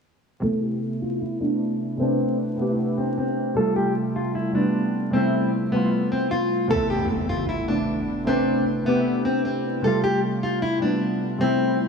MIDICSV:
0, 0, Header, 1, 4, 480
1, 0, Start_track
1, 0, Key_signature, 0, "minor"
1, 0, Tempo, 392157
1, 525, Time_signature, 4, 2, 24, 8
1, 14544, End_track
2, 0, Start_track
2, 0, Title_t, "Nylon-string guitar"
2, 0, Program_c, 0, 24
2, 527, Note_on_c, 0, 69, 110
2, 721, Note_off_c, 0, 69, 0
2, 766, Note_on_c, 0, 67, 70
2, 960, Note_off_c, 0, 67, 0
2, 1248, Note_on_c, 0, 65, 79
2, 1441, Note_off_c, 0, 65, 0
2, 1486, Note_on_c, 0, 64, 78
2, 1680, Note_off_c, 0, 64, 0
2, 1724, Note_on_c, 0, 62, 79
2, 2401, Note_off_c, 0, 62, 0
2, 2445, Note_on_c, 0, 60, 110
2, 2896, Note_off_c, 0, 60, 0
2, 3167, Note_on_c, 0, 59, 77
2, 3617, Note_off_c, 0, 59, 0
2, 3643, Note_on_c, 0, 60, 83
2, 3839, Note_off_c, 0, 60, 0
2, 3887, Note_on_c, 0, 60, 85
2, 4337, Note_off_c, 0, 60, 0
2, 4365, Note_on_c, 0, 69, 108
2, 4560, Note_off_c, 0, 69, 0
2, 4604, Note_on_c, 0, 67, 91
2, 4799, Note_off_c, 0, 67, 0
2, 5090, Note_on_c, 0, 65, 80
2, 5283, Note_off_c, 0, 65, 0
2, 5324, Note_on_c, 0, 64, 85
2, 5519, Note_off_c, 0, 64, 0
2, 5567, Note_on_c, 0, 62, 75
2, 6243, Note_off_c, 0, 62, 0
2, 6284, Note_on_c, 0, 60, 106
2, 6735, Note_off_c, 0, 60, 0
2, 7003, Note_on_c, 0, 59, 75
2, 7455, Note_off_c, 0, 59, 0
2, 7488, Note_on_c, 0, 60, 83
2, 7681, Note_off_c, 0, 60, 0
2, 7723, Note_on_c, 0, 65, 83
2, 8175, Note_off_c, 0, 65, 0
2, 8208, Note_on_c, 0, 69, 118
2, 8401, Note_off_c, 0, 69, 0
2, 8446, Note_on_c, 0, 67, 73
2, 8640, Note_off_c, 0, 67, 0
2, 8927, Note_on_c, 0, 65, 85
2, 9121, Note_off_c, 0, 65, 0
2, 9166, Note_on_c, 0, 64, 85
2, 9360, Note_off_c, 0, 64, 0
2, 9403, Note_on_c, 0, 62, 85
2, 10081, Note_off_c, 0, 62, 0
2, 10123, Note_on_c, 0, 60, 109
2, 10575, Note_off_c, 0, 60, 0
2, 10846, Note_on_c, 0, 59, 79
2, 11297, Note_off_c, 0, 59, 0
2, 11323, Note_on_c, 0, 60, 81
2, 11519, Note_off_c, 0, 60, 0
2, 11567, Note_on_c, 0, 60, 89
2, 12017, Note_off_c, 0, 60, 0
2, 12046, Note_on_c, 0, 69, 103
2, 12240, Note_off_c, 0, 69, 0
2, 12284, Note_on_c, 0, 67, 92
2, 12479, Note_off_c, 0, 67, 0
2, 12768, Note_on_c, 0, 65, 81
2, 12962, Note_off_c, 0, 65, 0
2, 13001, Note_on_c, 0, 64, 85
2, 13198, Note_off_c, 0, 64, 0
2, 13245, Note_on_c, 0, 62, 73
2, 13922, Note_off_c, 0, 62, 0
2, 13963, Note_on_c, 0, 60, 107
2, 14415, Note_off_c, 0, 60, 0
2, 14544, End_track
3, 0, Start_track
3, 0, Title_t, "Synth keys"
3, 0, Program_c, 1, 88
3, 486, Note_on_c, 1, 48, 96
3, 507, Note_on_c, 1, 57, 83
3, 529, Note_on_c, 1, 59, 86
3, 551, Note_on_c, 1, 64, 104
3, 770, Control_c, 1, 64, 127
3, 1341, Note_off_c, 1, 48, 0
3, 1352, Note_off_c, 1, 57, 0
3, 1362, Note_off_c, 1, 59, 0
3, 1373, Note_off_c, 1, 64, 0
3, 1700, Note_on_c, 1, 48, 73
3, 1722, Note_on_c, 1, 57, 68
3, 1743, Note_on_c, 1, 59, 69
3, 1764, Note_on_c, 1, 62, 83
3, 2340, Note_off_c, 1, 48, 0
3, 2351, Note_off_c, 1, 57, 0
3, 2362, Note_off_c, 1, 59, 0
3, 2372, Note_off_c, 1, 62, 0
3, 2411, Note_on_c, 1, 48, 87
3, 2432, Note_on_c, 1, 57, 78
3, 2454, Note_on_c, 1, 71, 87
3, 2475, Note_on_c, 1, 62, 99
3, 3055, Note_off_c, 1, 48, 0
3, 3066, Note_off_c, 1, 57, 0
3, 3077, Note_off_c, 1, 71, 0
3, 3088, Note_off_c, 1, 62, 0
3, 3133, Note_on_c, 1, 48, 74
3, 3155, Note_on_c, 1, 57, 64
3, 3176, Note_on_c, 1, 59, 72
3, 3198, Note_on_c, 1, 67, 84
3, 3254, Note_off_c, 1, 48, 0
3, 3269, Note_on_c, 1, 48, 73
3, 3270, Note_off_c, 1, 57, 0
3, 3280, Note_off_c, 1, 59, 0
3, 3290, Note_on_c, 1, 57, 65
3, 3291, Note_off_c, 1, 67, 0
3, 3312, Note_on_c, 1, 59, 64
3, 3333, Note_on_c, 1, 64, 81
3, 4103, Note_off_c, 1, 48, 0
3, 4113, Note_off_c, 1, 57, 0
3, 4124, Note_off_c, 1, 59, 0
3, 4135, Note_off_c, 1, 64, 0
3, 4333, Note_on_c, 1, 48, 95
3, 4355, Note_on_c, 1, 55, 93
3, 4376, Note_on_c, 1, 57, 85
3, 4380, Control_c, 1, 64, 0
3, 4398, Note_on_c, 1, 65, 101
3, 4618, Control_c, 1, 64, 127
3, 5184, Note_off_c, 1, 48, 0
3, 5195, Note_off_c, 1, 55, 0
3, 5206, Note_off_c, 1, 57, 0
3, 5217, Note_off_c, 1, 65, 0
3, 5527, Note_on_c, 1, 48, 77
3, 5549, Note_on_c, 1, 55, 70
3, 5571, Note_on_c, 1, 57, 68
3, 5592, Note_on_c, 1, 59, 80
3, 6173, Note_off_c, 1, 48, 0
3, 6184, Note_off_c, 1, 55, 0
3, 6195, Note_off_c, 1, 57, 0
3, 6206, Note_off_c, 1, 59, 0
3, 6248, Note_on_c, 1, 48, 91
3, 6269, Note_on_c, 1, 55, 85
3, 6291, Note_on_c, 1, 57, 88
3, 6313, Note_on_c, 1, 64, 108
3, 6894, Note_off_c, 1, 48, 0
3, 6904, Note_off_c, 1, 55, 0
3, 6915, Note_off_c, 1, 57, 0
3, 6926, Note_off_c, 1, 64, 0
3, 6982, Note_on_c, 1, 48, 76
3, 7004, Note_on_c, 1, 55, 72
3, 7026, Note_on_c, 1, 57, 72
3, 7047, Note_on_c, 1, 65, 81
3, 7088, Note_off_c, 1, 48, 0
3, 7103, Note_on_c, 1, 48, 76
3, 7110, Note_off_c, 1, 55, 0
3, 7125, Note_off_c, 1, 57, 0
3, 7125, Note_on_c, 1, 55, 69
3, 7136, Note_off_c, 1, 65, 0
3, 7146, Note_on_c, 1, 57, 68
3, 7168, Note_on_c, 1, 65, 77
3, 7940, Note_off_c, 1, 48, 0
3, 7951, Note_off_c, 1, 55, 0
3, 7961, Note_off_c, 1, 57, 0
3, 7972, Note_off_c, 1, 65, 0
3, 8166, Note_on_c, 1, 48, 98
3, 8188, Note_on_c, 1, 57, 92
3, 8210, Note_on_c, 1, 59, 90
3, 8219, Control_c, 1, 64, 0
3, 8232, Note_on_c, 1, 64, 105
3, 8466, Control_c, 1, 64, 127
3, 9021, Note_off_c, 1, 48, 0
3, 9032, Note_off_c, 1, 57, 0
3, 9043, Note_off_c, 1, 59, 0
3, 9054, Note_off_c, 1, 64, 0
3, 9379, Note_on_c, 1, 48, 73
3, 9401, Note_on_c, 1, 57, 72
3, 9423, Note_on_c, 1, 59, 71
3, 9444, Note_on_c, 1, 62, 85
3, 10020, Note_off_c, 1, 48, 0
3, 10030, Note_off_c, 1, 57, 0
3, 10041, Note_off_c, 1, 59, 0
3, 10052, Note_off_c, 1, 62, 0
3, 10090, Note_on_c, 1, 48, 90
3, 10111, Note_on_c, 1, 57, 81
3, 10133, Note_on_c, 1, 71, 94
3, 10155, Note_on_c, 1, 62, 104
3, 10735, Note_off_c, 1, 48, 0
3, 10746, Note_off_c, 1, 57, 0
3, 10756, Note_off_c, 1, 71, 0
3, 10767, Note_off_c, 1, 62, 0
3, 10812, Note_on_c, 1, 48, 77
3, 10833, Note_on_c, 1, 57, 70
3, 10854, Note_on_c, 1, 59, 74
3, 10877, Note_on_c, 1, 67, 86
3, 10932, Note_off_c, 1, 48, 0
3, 10947, Note_on_c, 1, 48, 80
3, 10949, Note_off_c, 1, 57, 0
3, 10959, Note_off_c, 1, 59, 0
3, 10968, Note_on_c, 1, 57, 67
3, 10970, Note_off_c, 1, 67, 0
3, 10990, Note_on_c, 1, 59, 65
3, 11011, Note_on_c, 1, 64, 84
3, 11782, Note_off_c, 1, 48, 0
3, 11792, Note_off_c, 1, 57, 0
3, 11803, Note_off_c, 1, 59, 0
3, 11814, Note_off_c, 1, 64, 0
3, 12014, Note_on_c, 1, 48, 100
3, 12036, Note_on_c, 1, 55, 99
3, 12057, Note_on_c, 1, 57, 86
3, 12059, Control_c, 1, 64, 0
3, 12078, Note_on_c, 1, 65, 105
3, 12282, Control_c, 1, 64, 127
3, 12865, Note_off_c, 1, 48, 0
3, 12876, Note_off_c, 1, 55, 0
3, 12887, Note_off_c, 1, 57, 0
3, 12897, Note_off_c, 1, 65, 0
3, 13207, Note_on_c, 1, 48, 80
3, 13228, Note_on_c, 1, 55, 72
3, 13250, Note_on_c, 1, 57, 67
3, 13272, Note_on_c, 1, 59, 81
3, 13853, Note_off_c, 1, 48, 0
3, 13864, Note_off_c, 1, 55, 0
3, 13875, Note_off_c, 1, 57, 0
3, 13886, Note_off_c, 1, 59, 0
3, 13930, Note_on_c, 1, 48, 95
3, 13951, Note_on_c, 1, 55, 90
3, 13973, Note_on_c, 1, 57, 89
3, 13994, Note_on_c, 1, 64, 112
3, 14544, Note_off_c, 1, 48, 0
3, 14544, Note_off_c, 1, 55, 0
3, 14544, Note_off_c, 1, 57, 0
3, 14544, Note_off_c, 1, 64, 0
3, 14544, End_track
4, 0, Start_track
4, 0, Title_t, "Impact"
4, 0, Program_c, 2, 103
4, 8205, Note_on_c, 2, 60, 85
4, 10125, Note_off_c, 2, 60, 0
4, 14544, End_track
0, 0, End_of_file